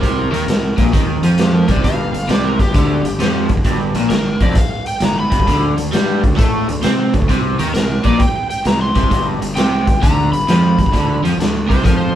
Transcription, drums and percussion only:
0.03 kick, closed hi-hat
0.34 closed hi-hat
0.48 snare, closed hi-hat
0.78 kick, snare, closed hi-hat
0.93 kick, closed hi-hat
1.23 closed hi-hat
1.38 snare, closed hi-hat
1.68 kick, closed hi-hat
1.76 kick
1.84 kick, closed hi-hat
2.14 closed hi-hat
2.29 snare, closed hi-hat
2.59 kick, snare, closed hi-hat
2.74 kick, closed hi-hat
3.05 closed hi-hat
3.20 snare, closed hi-hat
3.49 kick, closed hi-hat
3.57 kick
3.64 kick, closed hi-hat
3.95 closed hi-hat
4.10 snare, closed hi-hat
4.40 kick, closed hi-hat
4.50 snare
4.55 kick, closed hi-hat
4.86 closed hi-hat
5.00 snare, closed hi-hat
5.32 kick, closed hi-hat
5.40 kick
5.47 kick, closed hi-hat
5.78 closed hi-hat
5.93 snare, closed hi-hat
6.24 kick, closed hi-hat
6.33 snare
6.38 kick, closed hi-hat
6.69 closed hi-hat
6.83 snare, closed hi-hat
7.14 kick, closed hi-hat
7.22 kick
7.29 kick, closed hi-hat
7.59 closed hi-hat
7.75 snare, closed hi-hat
8.04 kick, snare, closed hi-hat
8.20 kick, closed hi-hat
8.50 closed hi-hat
8.65 snare, closed hi-hat
8.95 kick, closed hi-hat
9.03 kick
9.11 kick, closed hi-hat
9.42 closed hi-hat
9.57 snare, closed hi-hat
9.87 kick, closed hi-hat
10.03 kick, closed hi-hat
10.33 closed hi-hat
10.48 snare, closed hi-hat
10.79 kick, closed hi-hat
10.86 kick
10.93 kick, closed hi-hat
11.25 closed hi-hat
11.40 snare, closed hi-hat
11.70 kick, snare, closed hi-hat
11.80 snare
11.85 kick, closed hi-hat

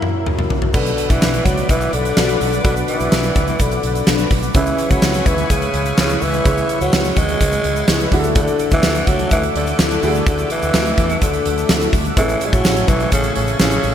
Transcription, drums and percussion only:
0.02 mid tom
0.26 mid tom
0.39 mid tom
0.50 floor tom
0.62 floor tom
0.74 kick, crash, shaker
0.86 closed hi-hat, shaker
0.98 closed hi-hat, shaker
1.10 kick, closed hi-hat, shaker
1.22 snare, tambourine, shaker
1.34 closed hi-hat, shaker
1.46 kick, closed hi-hat, shaker
1.57 closed hi-hat, shaker
1.69 kick, closed hi-hat, shaker
1.81 closed hi-hat, shaker
1.93 closed hi-hat
2.05 closed hi-hat, shaker
2.17 snare, tambourine, shaker
2.29 closed hi-hat, shaker
2.41 open hi-hat, shaker
2.53 closed hi-hat, shaker
2.65 kick, closed hi-hat, shaker
2.76 closed hi-hat, shaker
2.88 closed hi-hat, shaker
3.00 closed hi-hat, shaker
3.12 snare, tambourine, shaker
3.23 closed hi-hat, shaker
3.35 kick, closed hi-hat, shaker
3.48 closed hi-hat, shaker
3.59 kick, closed hi-hat, shaker
3.71 closed hi-hat, shaker
3.83 closed hi-hat
3.95 closed hi-hat, shaker
4.07 snare, tambourine, shaker
4.18 closed hi-hat, shaker
4.31 kick, open hi-hat, shaker
4.43 closed hi-hat, shaker
4.54 kick, closed hi-hat, shaker
4.66 closed hi-hat, shaker
4.78 closed hi-hat, shaker
4.90 kick, closed hi-hat, shaker
5.02 snare, tambourine, shaker
5.14 closed hi-hat, shaker
5.26 kick, closed hi-hat, shaker
5.38 closed hi-hat, shaker
5.50 kick, closed hi-hat, shaker
5.61 closed hi-hat, shaker
5.74 closed hi-hat
5.85 closed hi-hat, shaker
5.97 snare, tambourine, shaker
6.09 closed hi-hat, shaker
6.21 open hi-hat, shaker
6.33 closed hi-hat, shaker
6.45 kick, closed hi-hat, shaker
6.57 closed hi-hat, shaker
6.69 closed hi-hat, shaker
6.81 closed hi-hat, shaker
6.93 snare, tambourine, shaker
7.04 closed hi-hat, shaker
7.16 kick, closed hi-hat, shaker
7.28 closed hi-hat, shaker
7.41 kick, closed hi-hat, shaker
7.52 closed hi-hat, shaker
7.64 closed hi-hat
7.76 closed hi-hat, shaker
7.88 snare, tambourine, shaker
8.00 closed hi-hat, shaker
8.12 kick, open hi-hat, shaker
8.24 closed hi-hat, shaker
8.35 kick, closed hi-hat, shaker
8.48 closed hi-hat, shaker
8.59 closed hi-hat, shaker
8.71 kick, closed hi-hat, shaker
8.83 snare, tambourine, shaker
8.94 closed hi-hat, shaker
9.07 kick, closed hi-hat, shaker
9.19 closed hi-hat, shaker
9.31 kick, closed hi-hat, shaker
9.43 closed hi-hat, shaker
9.56 closed hi-hat
9.67 closed hi-hat, shaker
9.79 snare, tambourine, shaker
9.91 closed hi-hat, shaker
10.03 open hi-hat, shaker
10.15 closed hi-hat, shaker
10.26 kick, closed hi-hat, shaker
10.38 closed hi-hat, shaker
10.50 closed hi-hat, shaker
10.62 closed hi-hat, shaker
10.74 snare, tambourine, shaker
10.86 closed hi-hat, shaker
10.98 kick, closed hi-hat, shaker
11.09 closed hi-hat, shaker
11.21 kick, closed hi-hat, shaker
11.33 closed hi-hat, shaker
11.46 closed hi-hat
11.58 closed hi-hat, shaker
11.69 snare, tambourine, shaker
11.81 closed hi-hat, shaker
11.93 kick, open hi-hat, shaker
12.05 closed hi-hat, shaker
12.17 kick, closed hi-hat, shaker
12.29 closed hi-hat, shaker
12.41 closed hi-hat, shaker
12.53 kick, closed hi-hat, shaker
12.64 snare, tambourine, shaker
12.76 closed hi-hat, shaker
12.88 kick, closed hi-hat, shaker
13.00 closed hi-hat, shaker
13.12 kick, closed hi-hat, shaker
13.23 closed hi-hat, shaker
13.35 closed hi-hat
13.47 closed hi-hat, shaker
13.59 snare, tambourine, shaker
13.71 closed hi-hat, shaker
13.83 open hi-hat, shaker

